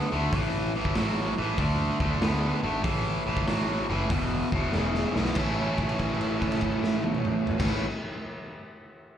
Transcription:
0.12 D2 D3 A3
0.33 A1 A2 E3, kick, open hi-hat
0.76 A2 E3
0.85 kick
0.95 A1 A2 F#3, snare, open hi-hat
1.38 A1 A2 E3
1.58 D2 D3 A3, kick, open hi-hat
2.00 D2 D3 A3, kick
2.21 D2 D3 B3, snare, open hi-hat
2.63 G#1 D3 A3
2.83 A1 A2 E3, kick, open hi-hat
3.26 A1 A2 E3
3.37 kick
3.47 A1 A2 F#3, snare, open hi-hat
3.89 F#1 A2 E3
4.10 E1 E2 B2, kick, open hi-hat
4.52 E1 E2 B2, kick
4.72 E1 E2 C#3, snare
4.94 snare
5.14 B1 E2 B2, snare
5.25 snare
5.35 A1 A2 E3 A3 C#4 E4, kick, crash
5.78 kick, crash
5.89 crash
5.99 kick, crash
6.21 crash
6.42 kick, crash
6.52 crash
6.61 kick, crash
6.84 snare
7.04 high tom
7.15 mid tom
7.25 mid tom
7.47 floor tom
7.59 A1 A2 E3 A3 C#4, kick, snare, crash
7.63 E4

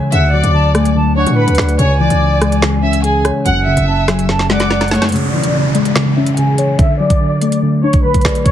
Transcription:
Already playing: C#3 E3 G#3 C#4 C#5
0.12 D2 D3 E5 F#5 E6, closed hi-hat
0.33 F#3 D5 D6
0.44 D2, closed hi-hat
0.54 D3 A5
0.75 A3 G#5, cross-stick, closed hi-hat
0.85 C#2, closed hi-hat
0.96 D3 A5
1.06 D2
1.16 D4 C#5 F#5 C#6
1.26 A2, closed hi-hat
1.37 D3 B4 B5
1.48 D2, closed hi-hat
1.55 D2 D5, cross-stick, snare, closed hi-hat
1.59 finger snap, closed hi-hat
1.69 closed hi-hat
1.79 C#2 C#3 C#5 G#5 C#6, closed hi-hat
2.00 E3 D5 D6
2.10 C#2, closed hi-hat
2.21 C#3
2.41 G#3, cross-stick, closed hi-hat
2.52 closed hi-hat
2.62 C#3, finger snap, snare
2.83 C#4 E5 E6
2.93 closed hi-hat
3.04 C#3 G#4 G#5, closed hi-hat
3.25 C#5, cross-stick, closed hi-hat
3.46 F#1 F#2 F#5 F#6, closed hi-hat
3.67 C#3 E5 E6
3.77 F#1, closed hi-hat
3.87 F#2 A5
4.08 F#3 G#5, cross-stick, snare, closed hi-hat
4.19 closed hi-hat
4.29 F#2 A5, snare
4.39 snare
4.50 G#3 D5 F#5 D6, snare
4.60 snare, closed hi-hat
4.70 F#2, snare
4.81 snare, closed hi-hat
4.88 A3 C#5, snare, closed hi-hat, open hi-hat
4.93 C#6, closed hi-hat
5.02 snare, closed hi-hat
5.09 closed hi-hat
5.12 C#3 C#5 C#6, closed hi-hat, downlifter
5.16 closed hi-hat
5.33 E3 D5 D6
5.44 closed hi-hat
5.54 C#3
5.75 G#3, closed hi-hat
5.85 closed hi-hat
5.95 C#3, finger snap, snare
6.16 C#4 E5 E6
6.26 closed hi-hat
6.37 C#3 G#4 G#5, closed hi-hat
6.58 C#5, closed hi-hat
6.79 D3 E5 E6, kick, closed hi-hat
7.00 F#3 D5 D6
7.10 kick, closed hi-hat
7.20 D3
7.41 A3, closed hi-hat
7.52 closed hi-hat
7.62 D3
7.83 D4 C#5 C#6
7.93 kick, closed hi-hat
8.04 D3 B4 B5
8.14 kick, closed hi-hat
8.21 D5, kick, snare, closed hi-hat
8.26 finger snap, closed hi-hat
8.35 closed hi-hat
8.45 C#3 C#5 C#6, kick, closed hi-hat

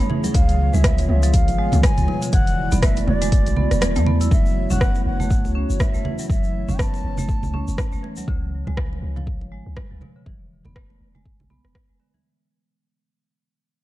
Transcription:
Already playing: A3 E4 G#4 C#5
0.09 E3, muted conga, low conga
0.24 F#3, closed hi-hat, high conga, shaker
0.34 C#2 C#3 B3 F4 F5, kick, closed hi-hat, muted conga, high conga, shaker
0.49 closed hi-hat, shaker
0.73 C#2 G#3 E5, muted conga, high conga, shaker
0.84 F3, kick, cross-stick, closed hi-hat, shaker
0.98 closed hi-hat, muted conga, shaker
1.09 C#2 E5, mid tom
1.23 F3, closed hi-hat, muted conga, shaker
1.34 F5, kick, closed hi-hat, shaker
1.48 G#1, closed hi-hat, muted conga, shaker
1.58 G#3
1.72 C#2, closed hi-hat, mid tom, low conga, shaker
1.83 G#5, kick, cross-stick, closed hi-hat, muted conga, high conga, shaker
1.97 C#2 F3, closed hi-hat, low conga, shaker
2.08 B2, muted conga, high conga
2.22 C#3, closed hi-hat, shaker
2.32 E1 E3 E4 F#4 D5 F#5, kick, closed hi-hat, muted conga, high conga, shaker
2.47 closed hi-hat, shaker
2.72 E1 B3, closed hi-hat, muted conga, high conga, shaker
2.82 A3 E5, kick, cross-stick, closed hi-hat, shaker
2.96 closed hi-hat, muted conga, shaker
3.07 E1 D5, mid tom, low conga
3.21 G#3, closed hi-hat, muted conga, shaker
3.32 kick, closed hi-hat, shaker
3.46 B1, closed hi-hat, muted conga, shaker
3.56 B3, low conga
3.71 E1, cross-stick, closed hi-hat, shaker
3.81 E3, cross-stick, closed hi-hat, muted conga, high conga, shaker
3.96 E2 A3, closed hi-hat, mid tom, shaker
4.06 B3, muted conga, low conga
4.21 E4, closed hi-hat, high conga, shaker
4.31 F#1 F#3 A3 E4 F#4 C#5 E5, kick, muted conga, high conga, shaker
4.46 shaker
4.70 F#1 C#4 F#5, muted conga, high conga, low conga, shaker
4.81 B3, kick, cross-stick, shaker
4.95 muted conga, shaker
5.06 F#1 F#5
5.20 A3, muted conga, low conga, shaker
5.31 kick, shaker
5.45 C#2, muted conga, shaker
5.55 C#4
5.70 F#1, shaker
5.80 E5, kick, cross-stick, muted conga, high conga, shaker
5.94 F#1 A3, shaker
6.05 E3, muted conga, high conga, low conga
6.19 F#3, shaker
6.29 F#1 F#3 G#3 E5, kick, muted conga, high conga, shaker
6.43 shaker
6.69 F#1 C#4, muted conga, high conga, low conga, shaker
6.79 B3 A5, kick, cross-stick, shaker
6.94 muted conga, shaker
7.04 F#1
7.18 A3, muted conga, low conga, shaker
7.29 kick, shaker
7.43 C#2, muted conga, low conga, shaker
7.53 C#4, high conga, low conga
7.68 F#1, shaker
7.78 kick, cross-stick, muted conga, high conga, shaker
7.92 F#1 A3, shaker
8.03 E3, muted conga
8.16 F#3, high conga, shaker
8.28 C#2 C#3 B3 F4 C#5, kick, muted conga, high conga
8.67 C#2 G#3, muted conga, high conga, low conga
8.77 F3, kick, cross-stick
8.93 muted conga
9.02 C#2
9.16 F3, muted conga, low conga
9.27 kick
9.41 G#1, muted conga
9.52 G#3
9.66 C#2
9.76 kick, cross-stick, muted conga, high conga
9.91 C#2 F3
10.01 B2, muted conga, high conga, low conga
10.16 C#3
10.26 E1 E3 E4 F#4 D5, kick, muted conga, high conga
10.65 E1 B3, muted conga, high conga, low conga
10.76 A3, kick, cross-stick
10.90 muted conga
11.01 E1
11.15 G#3, muted conga, low conga
11.25 kick
11.40 B1, muted conga, low conga
11.50 B3, high conga, low conga
11.64 E1, cross-stick
11.75 kick, cross-stick, muted conga, high conga
11.89 E1 G#3
12.00 D3, muted conga
12.14 E3, high conga

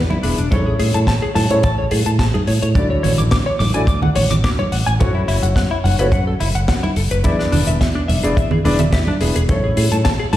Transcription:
Already playing: E2
0.10 E4, high conga
0.23 E1 B3 D4 E4 G#4 E5, open hi-hat
0.38 E1 D4, closed hi-hat
0.51 A1 A3 C#4 E4 A4 C#5, kick, closed hi-hat, high conga
0.66 G#4
0.79 A2 G#4, open hi-hat
0.94 A2 A5, closed hi-hat, high conga
1.07 A1 A5, kick, snare, closed hi-hat
1.22 G#4
1.35 A2 A5, open hi-hat, high conga
1.50 A2 A3 C#4 E4 G#4 C#5, closed hi-hat
1.63 A1 A5, kick, closed hi-hat
1.78 C#5
1.91 A2 G#4, open hi-hat, high conga
2.06 A2 A5, closed hi-hat
2.19 A1 A5, kick, snare, closed hi-hat
2.34 G#4, high conga
2.47 A2 C#5, open hi-hat
2.62 A2 C#5, closed hi-hat
2.75 D2 A3 D4 E4 F#4 D5, kick, closed hi-hat, high conga
2.90 C#5
3.03 A1 C#5, open hi-hat, low conga
3.18 A1 D6, closed hi-hat, high conga
3.31 D2 D6, kick, snare, closed hi-hat
3.46 C#5
3.59 A1 D6, open hi-hat, high conga
3.74 A1 A3 D4 E4 F#4 D5 G#5, closed hi-hat
3.87 D2 D6, kick, closed hi-hat
4.02 F#5, low conga
4.16 A1 C#5, open hi-hat, high conga
4.30 A1 D6, closed hi-hat, low conga
4.44 D2 D6, kick, snare, closed hi-hat
4.59 C#5, high conga
4.72 A1 F#5, open hi-hat
4.87 A1 G#5, closed hi-hat
4.99 F#2 A3 C#4 E4 F#4 C#5, kick, closed hi-hat, high conga
5.15 E4
5.28 F#1 E4, open hi-hat
5.43 F#1 F#5, closed hi-hat, high conga
5.56 F#2 F#5, kick, snare, closed hi-hat
5.71 E4
5.84 F#1 F#5, open hi-hat, high conga
5.99 F#1 A3 C#4 E4 F#4 B4 C#5, closed hi-hat
6.12 F#2 F#5, kick, closed hi-hat
6.27 A4
6.40 F#1 E4, open hi-hat, high conga
6.55 F#1 F#5, closed hi-hat
6.68 F#2 F#5, kick, snare, closed hi-hat
6.83 E4, high conga
6.96 F#1 A4, open hi-hat
7.11 F#1 B4, closed hi-hat
7.24 E2 B3 D4 E4 G#4 D5, kick, closed hi-hat, high conga
7.39 D4, snare
7.52 E1 D4, open hi-hat, low conga
7.67 E1 E5, closed hi-hat, high conga
7.81 E2 E5, kick, snare, closed hi-hat
7.95 D4
8.08 E1 E5, open hi-hat, high conga
8.23 E1 B3 D4 E4 G#4 D5, closed hi-hat
8.37 E2 E5, kick, closed hi-hat
8.51 G#4, low conga
8.64 E1 B3 D4 E4 G#4 D5, open hi-hat, high conga
8.79 E1 E5, closed hi-hat, low conga
8.93 E2 E5, kick, snare, closed hi-hat
9.07 D4, high conga
9.20 E1 B3 D4 E4 G#4 E5, open hi-hat
9.36 E1 G#4, closed hi-hat
9.48 A1 A3 C#4 E4 A4 C#5, kick, closed hi-hat, high conga
9.64 G#4
9.77 A2 G#4, open hi-hat
9.92 A2 A5, closed hi-hat, high conga
10.05 A1 A5, kick, snare, closed hi-hat
10.19 G#4
10.33 A2 A5, open hi-hat, high conga

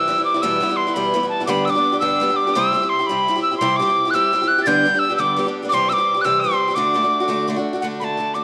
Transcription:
Already playing: E6
0.08 E3 G3 C4 E4
0.18 G3 C4 E4
0.25 D6
0.34 G3 C4 E4
0.42 E2 B2 E3 G3 B3 E4 E6
0.60 E3 G3 B3 E4
0.69 E3 G3 B3 E4
0.76 C6
0.87 E3 G3 B3 E4
0.94 E2 B2 E3 G3 B3 E4 B5
1.14 E3 G3 B3 E4
1.23 E3 G3 B3 E4
1.29 A5
1.40 E3 G3 B3 E4
1.46 G2 D3 G3 B3 D4 G4 B5 D6
1.65 G3 B3 E6
1.69 D4 G4 D6
1.75 G3 B3 D4 G4
1.92 G3 B3 D4 G4
2.00 G2 D3 G3 B3 D4 G4 E6
2.20 G3 B3 D4 G4
2.29 G3 B3 D4 G4
2.36 D6
2.47 G3 B3 D4 G4
2.54 C3 G3 C4 E4 G4 E6
2.73 G3 C4 E4 G4
2.81 C4 E4 G4
2.89 C6
2.99 C4 E4 G4
3.07 C3 G3 B5
3.11 C4 E4 G4
3.28 G3 C4 E4 G4
3.36 C4 E4 G4
3.43 E6
3.51 C4 E4 G4
3.58 C3 G3 C4 C6
3.62 E4 G4
3.76 G3 C4 D6
3.81 E4 G4
3.87 C4 E4 G4
4.05 C4 E4 G4
4.10 C3 G3 E6 F#6
4.15 C4 E4 G4
4.33 G3 C4 E4 G4
4.42 C4 E4 G4
4.48 F#6
4.58 C4 E4 G4
4.63 G2 D3 G3 B3 A6
4.67 D4 G4 G6
4.85 G3 B3 D4 G4
4.94 G3 B3 D4 G4
4.99 E6
5.10 G3 B3 D4 G4
5.17 G2 D3 G3 B3 D4 G4 D6 E6
5.36 G3 B3 D4 G4
5.46 G3 B3 D4 G4
5.62 G3 B3 D4 G4
5.69 C3 E3 D6
5.73 G3 C4 G4 C6
5.89 E3 G3 C4 G4 E6
5.93 D6
5.98 G3 C4 G4
6.14 G3 C4 G4
6.21 C3 E3 E6 F#6
6.25 G3 C4 G4
6.40 E3 C6
6.44 G3 C4 G4
6.51 G3 C4 G4
6.68 G3 C4 G4
6.75 D3 A3 D4 F#4 D6
6.94 D3 A3 D4 F#4
7.03 A3 D4 F#4
7.20 A3 D4 F#4
7.28 D3 A3 D4 F#4
7.47 D3 A3 D4 F#4
7.56 A3 D4 F#4
7.73 A3 D4 F#4
7.81 D3 A3 D4 F#4 F#5
8.00 D3 A3 D4 F#4 B5
8.04 A5
8.17 D3 A3 D4 F#4
8.34 D3 A3 D4 F#4 D6

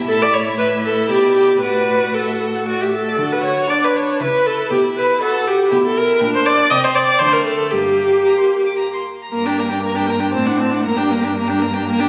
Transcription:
Already playing: E4
0.07 A2 A4 E5
0.22 D5
0.33 C#5
0.57 E4 B4
0.85 A4
1.09 B2 G4 D5
1.36 G4
1.61 A2 F#4 B4 D5
2.13 A4 D5
2.27 E5
2.55 F#5
2.67 F#4 D5
2.81 G4 E5
2.92 A4
3.08 D5
3.17 D3 F#4
3.32 B4
3.44 C#5
3.69 D4 D5 F#5
3.84 B4
3.96 C#5
4.20 C#3 E4 B4 E5
4.46 A4
4.70 B2 G4
4.97 B4
5.21 F#4 A4 D5
5.47 G4
5.70 B2 E4 G4 G5
5.86 A4
5.97 A#4
6.20 A#2 D4 G5
6.36 C5
6.46 D5
6.70 C3 C4 D#5 A5
6.84 C5
6.95 D5
7.19 D3 A3 C5 C6
7.33 A#4
7.46 A4
7.71 G2 A#3 G4
8.26 A#5
8.37 C6
8.66 D6
8.78 A#5
8.94 C6
9.22 A#5
9.32 G2 A#3 A#4 A#5
9.45 D4 G4 G5
9.57 A#3 A#4 A#5
9.69 D4 G4 G5
9.83 A#3 A#4 A#5
9.95 D4 G4 G5
10.06 A#3 A#4 A#5
10.20 D4 G4 G5
10.32 A2 C4 C5 A5
10.45 D4 D5 F#5
10.57 C4 C5 A5
10.70 D4 D5
10.74 F#5
10.83 G2 A#3 A#4 A#5
10.96 D4 G4 G5
11.09 A#3 A#4 A#5
11.20 D4 G4
11.25 G5
11.33 A#3 A#4
11.38 A#5
11.47 D4 G4 G5
11.59 A#3 A#4 A#5
11.73 D4 G4 G5
11.86 A#3 A#4 A#5
11.98 D4 G4 G5

